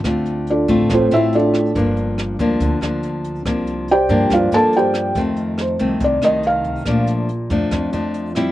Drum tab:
HH |xxxxxxxx|xxxxxxxx|xxxxxxxx|xxxxxxxx|
SD |r---r--r|--r--r--|r---r--r|--r--r--|
BD |o--oo---|o--oo---|o--oo---|o---o--o|

HH |xxxxxxxx|
SD |r---r--r|
BD |o--oo---|